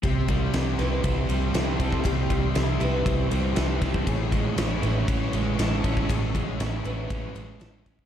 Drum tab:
RD |x-x-x-x-x-x-x-x-|x-x-x-x-x-x-x-x-|x-x-x-x-x-x-x-x-|x-x-x-x-x-x-x-x-|
SD |----o-o-----o---|----o-------o-o-|----o-------o---|----o-------o-o-|
BD |o-o-----o-----oo|o-o-----o-----oo|o-o-----o-----oo|o-o-----o-----oo|